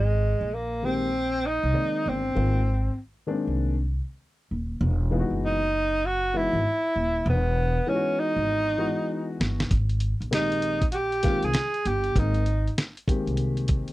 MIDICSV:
0, 0, Header, 1, 5, 480
1, 0, Start_track
1, 0, Tempo, 612245
1, 1853, Time_signature, 4, 2, 24, 8
1, 10920, End_track
2, 0, Start_track
2, 0, Title_t, "Tenor saxophone"
2, 0, Program_c, 0, 66
2, 0, Note_on_c, 0, 56, 97
2, 424, Note_on_c, 0, 58, 84
2, 435, Note_off_c, 0, 56, 0
2, 669, Note_on_c, 0, 60, 104
2, 681, Note_off_c, 0, 58, 0
2, 1144, Note_on_c, 0, 63, 95
2, 1156, Note_off_c, 0, 60, 0
2, 1638, Note_on_c, 0, 60, 92
2, 1650, Note_off_c, 0, 63, 0
2, 2345, Note_off_c, 0, 60, 0
2, 4274, Note_on_c, 0, 63, 103
2, 4749, Note_on_c, 0, 66, 115
2, 4760, Note_off_c, 0, 63, 0
2, 4994, Note_on_c, 0, 64, 95
2, 5006, Note_off_c, 0, 66, 0
2, 5703, Note_off_c, 0, 64, 0
2, 5718, Note_on_c, 0, 59, 92
2, 6187, Note_on_c, 0, 61, 92
2, 6199, Note_off_c, 0, 59, 0
2, 6425, Note_on_c, 0, 63, 101
2, 6436, Note_off_c, 0, 61, 0
2, 7378, Note_off_c, 0, 63, 0
2, 8108, Note_on_c, 0, 63, 94
2, 8508, Note_off_c, 0, 63, 0
2, 8558, Note_on_c, 0, 66, 85
2, 8579, Note_on_c, 0, 67, 110
2, 8591, Note_off_c, 0, 66, 0
2, 8978, Note_on_c, 0, 68, 93
2, 8990, Note_off_c, 0, 67, 0
2, 9310, Note_on_c, 0, 67, 94
2, 9321, Note_off_c, 0, 68, 0
2, 9556, Note_on_c, 0, 63, 83
2, 9567, Note_off_c, 0, 67, 0
2, 10024, Note_off_c, 0, 63, 0
2, 10920, End_track
3, 0, Start_track
3, 0, Title_t, "Grand piano"
3, 0, Program_c, 1, 0
3, 646, Note_on_c, 1, 51, 58
3, 651, Note_on_c, 1, 58, 53
3, 652, Note_on_c, 1, 56, 51
3, 653, Note_on_c, 1, 60, 50
3, 657, Note_on_c, 1, 67, 63
3, 834, Note_off_c, 1, 51, 0
3, 837, Note_off_c, 1, 56, 0
3, 837, Note_off_c, 1, 58, 0
3, 838, Note_off_c, 1, 60, 0
3, 840, Note_off_c, 1, 67, 0
3, 1359, Note_on_c, 1, 51, 54
3, 1364, Note_on_c, 1, 56, 53
3, 1364, Note_on_c, 1, 58, 55
3, 1368, Note_on_c, 1, 60, 57
3, 1372, Note_on_c, 1, 74, 70
3, 1724, Note_off_c, 1, 51, 0
3, 1727, Note_off_c, 1, 56, 0
3, 1727, Note_off_c, 1, 58, 0
3, 1729, Note_off_c, 1, 60, 0
3, 1730, Note_off_c, 1, 74, 0
3, 1845, Note_on_c, 1, 51, 69
3, 1845, Note_on_c, 1, 56, 61
3, 1850, Note_on_c, 1, 58, 59
3, 1854, Note_on_c, 1, 60, 55
3, 1854, Note_on_c, 1, 65, 65
3, 2033, Note_off_c, 1, 51, 0
3, 2034, Note_off_c, 1, 56, 0
3, 2036, Note_off_c, 1, 58, 0
3, 2038, Note_off_c, 1, 60, 0
3, 2038, Note_off_c, 1, 65, 0
3, 2560, Note_on_c, 1, 51, 68
3, 2566, Note_on_c, 1, 56, 70
3, 2566, Note_on_c, 1, 58, 63
3, 2569, Note_on_c, 1, 60, 75
3, 2571, Note_on_c, 1, 62, 88
3, 2925, Note_off_c, 1, 51, 0
3, 2927, Note_off_c, 1, 58, 0
3, 2928, Note_off_c, 1, 56, 0
3, 2929, Note_off_c, 1, 60, 0
3, 2930, Note_off_c, 1, 62, 0
3, 4005, Note_on_c, 1, 52, 87
3, 4008, Note_on_c, 1, 56, 78
3, 4014, Note_on_c, 1, 59, 80
3, 4014, Note_on_c, 1, 63, 74
3, 4017, Note_on_c, 1, 65, 73
3, 4070, Note_on_c, 1, 66, 85
3, 4078, Note_off_c, 1, 65, 0
3, 4367, Note_off_c, 1, 52, 0
3, 4369, Note_off_c, 1, 56, 0
3, 4372, Note_off_c, 1, 59, 0
3, 4372, Note_off_c, 1, 63, 0
3, 4400, Note_off_c, 1, 66, 0
3, 4969, Note_on_c, 1, 52, 63
3, 4969, Note_on_c, 1, 56, 61
3, 4972, Note_on_c, 1, 59, 55
3, 4974, Note_on_c, 1, 63, 61
3, 4974, Note_on_c, 1, 66, 73
3, 5155, Note_off_c, 1, 52, 0
3, 5156, Note_off_c, 1, 56, 0
3, 5157, Note_off_c, 1, 59, 0
3, 5158, Note_off_c, 1, 63, 0
3, 5158, Note_off_c, 1, 66, 0
3, 6169, Note_on_c, 1, 52, 73
3, 6169, Note_on_c, 1, 56, 68
3, 6170, Note_on_c, 1, 59, 60
3, 6176, Note_on_c, 1, 63, 64
3, 6178, Note_on_c, 1, 64, 64
3, 6230, Note_on_c, 1, 66, 83
3, 6238, Note_off_c, 1, 64, 0
3, 6854, Note_off_c, 1, 52, 0
3, 6854, Note_off_c, 1, 56, 0
3, 6854, Note_off_c, 1, 59, 0
3, 6857, Note_off_c, 1, 63, 0
3, 6882, Note_off_c, 1, 66, 0
3, 6883, Note_on_c, 1, 52, 77
3, 6886, Note_on_c, 1, 56, 70
3, 6889, Note_on_c, 1, 59, 65
3, 6889, Note_on_c, 1, 63, 69
3, 6894, Note_on_c, 1, 66, 79
3, 7571, Note_off_c, 1, 52, 0
3, 7572, Note_off_c, 1, 56, 0
3, 7574, Note_off_c, 1, 59, 0
3, 7574, Note_off_c, 1, 63, 0
3, 7576, Note_off_c, 1, 66, 0
3, 8082, Note_on_c, 1, 51, 68
3, 8083, Note_on_c, 1, 58, 62
3, 8084, Note_on_c, 1, 56, 66
3, 8090, Note_on_c, 1, 60, 66
3, 8092, Note_on_c, 1, 67, 78
3, 8446, Note_off_c, 1, 51, 0
3, 8446, Note_off_c, 1, 58, 0
3, 8447, Note_off_c, 1, 56, 0
3, 8450, Note_off_c, 1, 60, 0
3, 8450, Note_off_c, 1, 67, 0
3, 8806, Note_on_c, 1, 51, 77
3, 8808, Note_on_c, 1, 56, 74
3, 8810, Note_on_c, 1, 58, 74
3, 8812, Note_on_c, 1, 60, 73
3, 8816, Note_on_c, 1, 65, 91
3, 8994, Note_off_c, 1, 51, 0
3, 8995, Note_off_c, 1, 56, 0
3, 8996, Note_off_c, 1, 58, 0
3, 8997, Note_off_c, 1, 60, 0
3, 8999, Note_off_c, 1, 65, 0
3, 9532, Note_on_c, 1, 51, 61
3, 9534, Note_on_c, 1, 56, 62
3, 9539, Note_on_c, 1, 58, 64
3, 9541, Note_on_c, 1, 60, 59
3, 9542, Note_on_c, 1, 70, 76
3, 9717, Note_off_c, 1, 51, 0
3, 9718, Note_off_c, 1, 56, 0
3, 9721, Note_off_c, 1, 58, 0
3, 9722, Note_off_c, 1, 60, 0
3, 9722, Note_off_c, 1, 70, 0
3, 10251, Note_on_c, 1, 51, 79
3, 10251, Note_on_c, 1, 56, 71
3, 10253, Note_on_c, 1, 58, 66
3, 10258, Note_on_c, 1, 60, 76
3, 10261, Note_on_c, 1, 67, 84
3, 10920, Note_off_c, 1, 51, 0
3, 10920, Note_off_c, 1, 56, 0
3, 10920, Note_off_c, 1, 58, 0
3, 10920, Note_off_c, 1, 60, 0
3, 10920, Note_off_c, 1, 67, 0
3, 10920, End_track
4, 0, Start_track
4, 0, Title_t, "Upright bass"
4, 0, Program_c, 2, 32
4, 0, Note_on_c, 2, 32, 107
4, 258, Note_off_c, 2, 32, 0
4, 320, Note_on_c, 2, 34, 81
4, 1249, Note_off_c, 2, 34, 0
4, 1280, Note_on_c, 2, 36, 85
4, 1358, Note_off_c, 2, 36, 0
4, 1614, Note_on_c, 2, 31, 83
4, 1815, Note_off_c, 2, 31, 0
4, 1854, Note_on_c, 2, 32, 104
4, 2257, Note_off_c, 2, 32, 0
4, 2723, Note_on_c, 2, 36, 74
4, 3126, Note_off_c, 2, 36, 0
4, 3537, Note_on_c, 2, 27, 73
4, 3737, Note_off_c, 2, 27, 0
4, 3769, Note_on_c, 2, 28, 110
4, 4097, Note_off_c, 2, 28, 0
4, 4158, Note_on_c, 2, 30, 73
4, 5088, Note_off_c, 2, 30, 0
4, 5122, Note_on_c, 2, 32, 87
4, 5199, Note_off_c, 2, 32, 0
4, 5454, Note_on_c, 2, 27, 82
4, 5655, Note_off_c, 2, 27, 0
4, 5689, Note_on_c, 2, 28, 113
4, 6095, Note_off_c, 2, 28, 0
4, 6557, Note_on_c, 2, 32, 89
4, 6962, Note_off_c, 2, 32, 0
4, 7372, Note_on_c, 2, 31, 88
4, 7574, Note_off_c, 2, 31, 0
4, 7613, Note_on_c, 2, 32, 104
4, 7939, Note_off_c, 2, 32, 0
4, 8001, Note_on_c, 2, 34, 77
4, 8929, Note_off_c, 2, 34, 0
4, 8961, Note_on_c, 2, 36, 75
4, 9038, Note_off_c, 2, 36, 0
4, 9294, Note_on_c, 2, 31, 95
4, 9495, Note_off_c, 2, 31, 0
4, 9530, Note_on_c, 2, 32, 112
4, 9935, Note_off_c, 2, 32, 0
4, 10398, Note_on_c, 2, 36, 72
4, 10803, Note_off_c, 2, 36, 0
4, 10920, End_track
5, 0, Start_track
5, 0, Title_t, "Drums"
5, 7377, Note_on_c, 9, 38, 91
5, 7455, Note_off_c, 9, 38, 0
5, 7527, Note_on_c, 9, 38, 89
5, 7606, Note_off_c, 9, 38, 0
5, 7611, Note_on_c, 9, 42, 92
5, 7612, Note_on_c, 9, 36, 83
5, 7689, Note_off_c, 9, 42, 0
5, 7690, Note_off_c, 9, 36, 0
5, 7757, Note_on_c, 9, 42, 48
5, 7836, Note_off_c, 9, 42, 0
5, 7842, Note_on_c, 9, 42, 74
5, 7921, Note_off_c, 9, 42, 0
5, 8011, Note_on_c, 9, 42, 47
5, 8089, Note_off_c, 9, 42, 0
5, 8096, Note_on_c, 9, 42, 92
5, 8097, Note_on_c, 9, 38, 118
5, 8174, Note_off_c, 9, 42, 0
5, 8175, Note_off_c, 9, 38, 0
5, 8246, Note_on_c, 9, 42, 54
5, 8325, Note_off_c, 9, 42, 0
5, 8328, Note_on_c, 9, 42, 81
5, 8406, Note_off_c, 9, 42, 0
5, 8480, Note_on_c, 9, 36, 89
5, 8481, Note_on_c, 9, 42, 56
5, 8558, Note_off_c, 9, 36, 0
5, 8559, Note_off_c, 9, 42, 0
5, 8562, Note_on_c, 9, 42, 81
5, 8640, Note_off_c, 9, 42, 0
5, 8720, Note_on_c, 9, 42, 46
5, 8799, Note_off_c, 9, 42, 0
5, 8803, Note_on_c, 9, 42, 81
5, 8813, Note_on_c, 9, 36, 91
5, 8816, Note_on_c, 9, 38, 35
5, 8881, Note_off_c, 9, 42, 0
5, 8892, Note_off_c, 9, 36, 0
5, 8894, Note_off_c, 9, 38, 0
5, 8958, Note_on_c, 9, 42, 54
5, 9036, Note_off_c, 9, 42, 0
5, 9043, Note_on_c, 9, 42, 107
5, 9052, Note_on_c, 9, 38, 111
5, 9122, Note_off_c, 9, 42, 0
5, 9131, Note_off_c, 9, 38, 0
5, 9205, Note_on_c, 9, 42, 45
5, 9283, Note_off_c, 9, 42, 0
5, 9294, Note_on_c, 9, 42, 81
5, 9373, Note_off_c, 9, 42, 0
5, 9438, Note_on_c, 9, 42, 39
5, 9516, Note_off_c, 9, 42, 0
5, 9531, Note_on_c, 9, 36, 103
5, 9534, Note_on_c, 9, 42, 86
5, 9609, Note_off_c, 9, 36, 0
5, 9612, Note_off_c, 9, 42, 0
5, 9678, Note_on_c, 9, 42, 46
5, 9756, Note_off_c, 9, 42, 0
5, 9769, Note_on_c, 9, 42, 70
5, 9848, Note_off_c, 9, 42, 0
5, 9937, Note_on_c, 9, 42, 42
5, 10016, Note_off_c, 9, 42, 0
5, 10019, Note_on_c, 9, 42, 88
5, 10020, Note_on_c, 9, 38, 127
5, 10097, Note_off_c, 9, 42, 0
5, 10098, Note_off_c, 9, 38, 0
5, 10170, Note_on_c, 9, 42, 59
5, 10249, Note_off_c, 9, 42, 0
5, 10252, Note_on_c, 9, 36, 96
5, 10262, Note_on_c, 9, 42, 89
5, 10330, Note_off_c, 9, 36, 0
5, 10340, Note_off_c, 9, 42, 0
5, 10407, Note_on_c, 9, 42, 52
5, 10484, Note_off_c, 9, 42, 0
5, 10484, Note_on_c, 9, 42, 86
5, 10562, Note_off_c, 9, 42, 0
5, 10639, Note_on_c, 9, 42, 49
5, 10718, Note_off_c, 9, 42, 0
5, 10725, Note_on_c, 9, 42, 74
5, 10733, Note_on_c, 9, 36, 91
5, 10803, Note_off_c, 9, 42, 0
5, 10812, Note_off_c, 9, 36, 0
5, 10880, Note_on_c, 9, 42, 56
5, 10920, Note_off_c, 9, 42, 0
5, 10920, End_track
0, 0, End_of_file